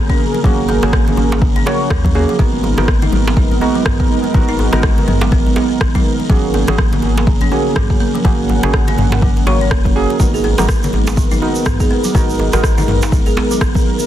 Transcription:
Already playing: A#3 C#4 F#4 G#4 A#4
0.09 C#4, kick
0.34 muted conga
0.44 G#1 F#3 A#3 C#4 F#4 G#4, kick, high conga, low conga
0.68 A#3, muted conga, djembe tone
0.82 G#1 F3 A#3 C#4 F#4 G#4, cross-stick, djembe slap, djembe tone, high conga, low conga
0.93 A#3, kick, cross-stick
1.08 low conga
1.17 G#1, muted conga, djembe tone, high conga
1.32 djembe slap
1.42 C#3, kick
1.56 G#1 C#4, muted conga
1.66 A#3 C#4 F#4 C#5, djembe slap, djembe tone
1.90 D#2 F#3, kick, cross-stick, muted conga
2.05 kick, high conga
2.15 A#3 C#4 F#4 G#4
2.29 F3, muted conga
2.39 G#1 G#3 B3 D#4 F#4 A#4, kick, high conga, low conga
2.63 muted conga, djembe tone
2.78 G#1 B3 D#4 F#4 A#4, cross-stick, djembe slap, high conga, low conga
2.88 D#3, kick, cross-stick
3.02 D#4, low conga
3.12 G#1, muted conga, high conga, djembe tone
3.27 djembe slap
3.37 G#3, kick, high conga
3.51 G#1, muted conga, high conga
3.61 B3 D#4 F#4 A#4, djembe tone
3.75 F#3
3.86 G#1 B3, kick, cross-stick, mid tom, muted conga
4.00 kick
4.24 muted conga
4.34 G#1 D#3 B3 D#4 F#4 A#4, kick, high conga, low conga
4.49 D#4
4.59 muted conga, djembe tone
4.73 G#1 B3 D#4 F#4 A#4, cross-stick, djembe slap, djembe tone, high conga, low conga
4.83 G#3, kick, cross-stick
4.98 low conga
5.07 G#1 B3, mid tom, muted conga, high conga, djembe tone
5.21 F#3, djembe slap
5.32 B3, kick
5.46 G#1, muted conga
5.56 djembe slap, djembe tone
5.81 G#1 D#3, kick, cross-stick, muted conga
5.95 D#4, kick, high conga
6.20 muted conga
6.30 G#1 F#3 A#3 C#4 F#4 G#4 A#4, kick, high conga, low conga
6.54 A#3, muted conga, djembe tone
6.68 G#1 F3 A#3 C#4 F#4 G#4, cross-stick, djembe slap, high conga, low conga
6.78 A#3, kick, cross-stick
6.93 low conga
7.02 G#1, muted conga, djembe tone, high conga
7.18 djembe slap
7.27 C#3, kick, high conga
7.41 G#1 C#4, muted conga, high conga
7.52 A#3 C#4 F#4 G#4, djembe tone
7.76 G#1 F#3, kick, cross-stick, mid tom, muted conga
7.90 kick
8.00 A#3
8.15 F3, muted conga
8.25 G#1 A#3 C#4 F#4 G#4 F#5, kick, high conga, low conga
8.49 muted conga, djembe tone
8.63 G#1 A#3 C#4 F#4 G#4, cross-stick, djembe slap, high conga, djembe tone, low conga
8.73 C#3, kick, cross-stick
8.88 C#4, low conga
8.98 G#1, mid tom, muted conga, high conga, djembe tone
9.12 mid tom, djembe slap
9.22 F#3, kick
9.37 G#1, muted conga, high conga
9.46 A#3 C#4 F#4 C#5, djembe slap, djembe tone
9.61 C#4
9.71 F#1 A#3, kick, cross-stick, muted conga
9.85 kick, high conga
9.96 A#3 C#4 F#4 G#4
10.10 muted conga
10.20 G#1 G#3 B3 D#4 F#4 A#4, kick, high conga, low conga, shaker
10.34 G#4, shaker
10.44 B3, muted conga, djembe tone
10.58 G#1 F#3 B3 D#4 F#4 A#4, cross-stick, djembe slap, high conga, low conga, shaker
10.69 B3, kick, cross-stick, shaker
10.83 low conga, shaker
10.93 G#1, muted conga, high conga, djembe tone
11.07 djembe slap, shaker
11.17 D#3, kick, high conga, shaker
11.31 G#1 D#4, muted conga, high conga, shaker
11.42 B3 D#4 F#4 A#4, djembe tone
11.55 shaker
11.65 G#1 G#3, kick, cross-stick, mid tom, muted conga, shaker
11.80 G#4, kick, shaker
11.91 B3
12.04 F#3, muted conga, shaker
12.15 G#1 B3 D#4 F#4 A#4, kick, high conga, low conga, shaker
12.29 shaker
12.39 muted conga, djembe tone
12.53 G#1 B3 D#4 F#4 A#4, cross-stick, djembe slap, djembe tone, high conga, low conga, shaker
12.64 D#3, kick, cross-stick, shaker
12.78 D#4, low conga, shaker
12.88 G#1, mid tom, muted conga, high conga, djembe tone
13.02 djembe slap, shaker
13.12 G#3, kick, shaker
13.26 G#1 G#4, muted conga, shaker
13.37 B3, djembe slap, djembe tone
13.51 F#3, shaker
13.61 G#1 B3, kick, cross-stick, muted conga
13.75 kick, high conga, shaker
13.99 muted conga, shaker

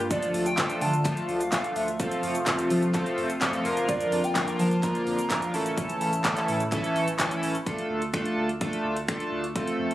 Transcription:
Already playing: G2 F4
0.10 D3 F3 A3 D4 F4 A4 D5, kick, closed hi-hat, shaker
0.23 closed hi-hat, shaker
0.34 D2, open hi-hat, shaker
0.46 G5, closed hi-hat, shaker
0.58 F3 A3 D4 F4 A4, kick, snare, clap, closed hi-hat, shaker
0.70 closed hi-hat, shaker
0.81 D3 A5, open hi-hat, shaker
0.93 closed hi-hat, shaker
1.05 F3 A3 D4 F4 A4 A5, kick, clap, closed hi-hat, shaker
1.17 closed hi-hat, shaker
1.29 D2, open hi-hat, shaker
1.41 F5, closed hi-hat, shaker
1.52 F3 A3 D4 F4 A4, kick, snare, clap, closed hi-hat, shaker
1.64 closed hi-hat, shaker
1.76 D2 E5, open hi-hat, shaker
1.88 closed hi-hat, shaker
2.00 C3 F3 A3 C4 F4 A4 F5, kick, closed hi-hat, shaker
2.12 closed hi-hat, shaker
2.23 F2, open hi-hat, shaker
2.35 closed hi-hat, shaker
2.47 F3 A3 C4 F4 A4, kick, snare, clap, closed hi-hat, shaker
2.59 closed hi-hat, shaker
2.70 F3, open hi-hat, shaker
2.82 closed hi-hat, shaker
2.94 F3 A3 C4 F4 A4, kick, clap, closed hi-hat, shaker
3.06 closed hi-hat, shaker
3.18 F2, open hi-hat, shaker
3.30 closed hi-hat, shaker
3.41 F3 A3 C4 F4 A4, kick, snare, clap, closed hi-hat, shaker
3.53 closed hi-hat, shaker
3.65 F2 D3 F3 A#3 D4 F4 A#4, open hi-hat, shaker
3.77 closed hi-hat, shaker
3.89 D5, kick, closed hi-hat, shaker
4.01 closed hi-hat, shaker
4.12 F2, open hi-hat, shaker
4.24 G5, closed hi-hat, shaker
4.36 F3 A#3 D4 F4 A#4, kick, snare, clap, closed hi-hat, shaker
4.48 closed hi-hat, shaker
4.59 F3 A5, open hi-hat, shaker
4.71 closed hi-hat, shaker
4.83 F3 A#3 D4 F4 A#4 A#5, kick, clap, closed hi-hat, shaker
4.95 closed hi-hat, shaker
5.07 F2, open hi-hat, shaker
5.19 closed hi-hat, shaker
5.30 F3 A#3 D4 F4 A#4, kick, snare, clap, closed hi-hat, shaker
5.42 closed hi-hat, shaker
5.54 A1 C#3 E3 A3 C#4 E4 A4 A5, open hi-hat, shaker
5.66 closed hi-hat, shaker
5.78 kick, closed hi-hat, shaker
5.89 closed hi-hat, shaker
6.01 A1, open hi-hat, shaker
6.13 closed hi-hat, shaker
6.24 E3 A3 C#4 E4 A4, kick, snare, clap, closed hi-hat, shaker
6.37 clap, closed hi-hat, shaker
6.48 A2, open hi-hat, shaker
6.60 closed hi-hat, shaker
6.72 E3 A3 C#4 E4 A4, kick, clap, closed hi-hat, shaker
6.84 closed hi-hat, shaker
6.96 A1, open hi-hat, shaker
7.08 closed hi-hat, shaker
7.19 E3 A3 C#4 E4 A4, kick, snare, clap, closed hi-hat, shaker
7.31 closed hi-hat, shaker
7.43 A1, open hi-hat, shaker
7.55 closed hi-hat, shaker
7.66 A3 D4 F4 A4, kick, closed hi-hat
7.78 closed hi-hat
7.90 D2
8.02 closed hi-hat
8.14 A3 D4 F4 A4, finger snap, kick, closed hi-hat
8.26 closed hi-hat
8.37 D2
8.49 closed hi-hat
8.61 A3 D4 F4 A4, kick, closed hi-hat
8.73 closed hi-hat
8.85 D2
8.97 closed hi-hat
9.08 A3 D4 F4 A4, finger snap, kick, closed hi-hat
9.20 closed hi-hat
9.32 D2
9.44 closed hi-hat
9.56 A3 C4 F4 A4, kick, closed hi-hat
9.67 closed hi-hat
9.79 F2
9.91 closed hi-hat

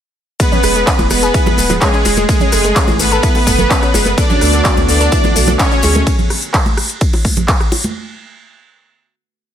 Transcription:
0.40 G#3 B3 B4, kick, closed hi-hat, ride, maracas
0.52 C#4, closed hi-hat, low conga, maracas
0.63 E1 G#3, cross-stick, open hi-hat, maracas
0.76 G#3, closed hi-hat, maracas
0.87 C#4, kick, clap, closed hi-hat, ride, maracas
0.99 E1 E3, closed hi-hat, high conga, maracas
1.10 E1 G#3 B3 B4, cross-stick, open hi-hat, maracas
1.23 G#4, closed hi-hat, maracas
1.34 E4, kick, closed hi-hat, ride, maracas
1.46 G#3, closed hi-hat, high bongo, low conga, maracas
1.57 D1 G#3, open hi-hat, high conga, maracas
1.70 G#3, closed hi-hat, high bongo, low conga, maracas
1.81 G#3 C#4 G#4, kick, clap, closed hi-hat, ride, maracas
1.93 C#4, closed hi-hat, maracas
2.05 E1 G#3, open hi-hat, high bongo, maracas
2.17 G#3, closed hi-hat, high conga, maracas
2.29 G#3 A3 G#4, kick, closed hi-hat, ride, maracas
2.40 C#4, closed hi-hat, low conga, maracas
2.52 F#1 A3, cross-stick, open hi-hat, maracas
2.64 A3, closed hi-hat, maracas
2.76 C#4, kick, clap, closed hi-hat, ride, maracas
2.88 G#1 E3, closed hi-hat, high conga, maracas
2.99 G#1 A3 B3 B4, open hi-hat, maracas
3.12 A4, closed hi-hat, maracas
3.23 E4, kick, closed hi-hat, ride, maracas
3.35 A3, open hi-hat, high bongo, maracas
3.47 F#1 A3, kick, open hi-hat, high conga, maracas
3.58 A3, closed hi-hat, low conga, maracas
3.70 C#4, kick, clap, closed hi-hat, ride, maracas
3.83 C#4, cross-stick, closed hi-hat, maracas
3.94 F#1 G#3, open hi-hat, high bongo, maracas
4.05 A3, closed hi-hat, high conga, maracas
4.18 D3 A3 B3 D4 F#4 D5, kick, closed hi-hat, ride, maracas
4.30 C#4, closed hi-hat, low conga, maracas
4.41 D2 A3, cross-stick, open hi-hat, maracas
4.53 A3, closed hi-hat, maracas
4.65 C#4, kick, clap, closed hi-hat, ride, maracas
4.77 D2 E3, closed hi-hat, high conga, maracas
4.89 D2 A3 D4 D5, open hi-hat, maracas
5.01 A4, closed hi-hat, maracas
5.12 E4, kick, closed hi-hat, ride, maracas
5.24 A3, closed hi-hat, high bongo, low conga, maracas
5.36 B1 A3, open hi-hat, high conga, maracas
5.47 A3, closed hi-hat, high bongo, low conga, maracas
5.59 C#4 C#5, kick, clap, closed hi-hat, ride, maracas
5.72 C#4, closed hi-hat, maracas
5.83 D2 G#3, open hi-hat, high bongo, maracas
5.95 A3, closed hi-hat, high conga, maracas
6.07 kick, closed hi-hat, ride
6.19 closed hi-hat, low conga
6.30 cross-stick, open hi-hat
6.42 closed hi-hat
6.54 kick, clap, closed hi-hat, ride
6.66 closed hi-hat, high conga
6.77 cross-stick, open hi-hat
6.90 closed hi-hat
7.01 kick, closed hi-hat, ride
7.13 open hi-hat, high bongo
7.25 kick, open hi-hat, high conga
7.37 closed hi-hat, low conga
7.48 kick, clap, closed hi-hat, ride
7.60 cross-stick, closed hi-hat
7.72 open hi-hat, high bongo
7.84 closed hi-hat, high conga

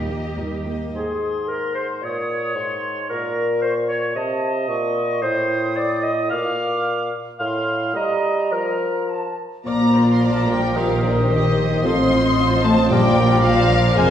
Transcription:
Already playing: D#2 G4 D#5
0.10 A#3 G4 D#5
0.37 D#2 G3 D#4 A#4
0.66 A#3 G4 D#5
0.94 G#2 G#4 C6
1.48 A#4
1.75 C5
2.02 A#2 C#5 D#6
2.55 G#2 C6
3.09 A#2 A#4 C#6
3.62 C5
3.88 C#5
4.15 C3 D#5 A5
4.68 A#2 C#6
5.22 A2 C5 D#6
5.76 D5
6.02 D#5
6.30 A#2 F5 D6
7.39 A2 F5 C6
7.94 G3 D#5 A#5
8.52 F3 A#4
9.10 A5
9.65 A#1 A#2 F3 A#3 F4 A#4 D5 A#5 D6
9.94 C5
10.13 C6
10.22 D5 A#5
10.31 A5
10.40 A#5
10.49 G3 A#4 G5
10.74 D#3 F3 G4 C5 F5 D#6
11.02 D3 D5
11.29 D#3 G4 D#5
11.83 A1 A2 F3 C4 F4 A4 D#5 C6
12.12 C5
12.64 A3 A5
12.88 A#1 A#2 G3 A#4 D5 G5 D6
13.18 A#4
13.43 F3 C5 F5
13.71 D5
13.95 F1 F2 G#3 F4 G#4 A#4 C5 G#5 F6

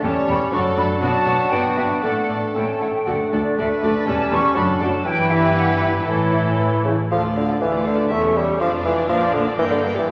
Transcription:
0.03 E1 E2 G3 A3 C#4 G4 A4 C#5 A5
0.28 E1 E2 A3 C#4 G4 A4 B5
0.52 F#1 F#2 F#3 A3 D4 F#4 A4 D5 C#6
0.76 F#1 F#2 A3 D4 F#4 D5 B5
1.01 B1 B2 F#3 B3 D4 F#4 D5 A5
1.26 B1 B2 B3 D4 F#4 D5
1.51 G1 G2 B3 D4 G4 D5 G5
1.77 G1 G2 B3 D4 G4 D5 E5
2.02 A1 A2 A3 D4 A4 D5 F#5
2.29 A1 A2 A3 D4 A4 D5
2.55 A1 A2 A3 C#4 E4 A4 C#5 G5
2.69 A5
2.81 A1 A2 A3 E4 A4 C#5 F#5
2.94 G5
3.06 D2 A3 D4 F#4 A4 D5 F#5
3.32 D2 A3 D4 F#4 A4 D5
3.57 D2 A3 F#4 A4 B4 D5 E5
3.82 D2 A3 D4 F#4 A4 D5
4.06 E1 E2 G3 A3 C#4 G4 A4 C#5 A5
4.31 E1 E2 G3 A3 C#4 G4 A4 C#5 C#6
4.55 F#1 F#2 F#3 A3 D4 F#4 A4 D5 B5
4.80 F#1 F#2 F#3 A3 D4 F#4 A4 D5 A5
5.03 G1 G2 E3 E4 G4 B4 G5
5.29 E3 E4 E5
5.57 F#5
5.80 E3 E4 E5
6.05 A1 A2 E3 E4 A4 C#5
6.32 E3 E4
6.59 E3
6.85 C#3 E3 E4
7.11 D2 F3 D4 A4 F5
7.23 F4 D5
7.35 D3 D4 A4 F5
7.48 F4 D5
7.60 D2 E3 A3 D4 A4 F5
7.72 F4 D5
7.85 D3 D4 A4 F5
7.97 F4 D5
8.10 E1 E2 A3 C#4 E4 A4 E5
8.23 G4 C#5
8.35 G3 E4 A4 E5
8.46 G4 C#5
8.58 F1 F2 F3 D4 A4 F5
8.71 F4 D5
8.84 E3 D4 A4 F5
8.96 F4 D5
9.08 A#1 A#2 F3 D4 A#4 F5
9.21 F4 D5
9.33 D3 D4 A#4 F5
9.46 F4 D5
9.58 G1 G2 E3 A#3 D4 A#4 G5
9.70 D3 G4 D5
9.83 D4 A#4 G5
9.95 E3 G4 D5

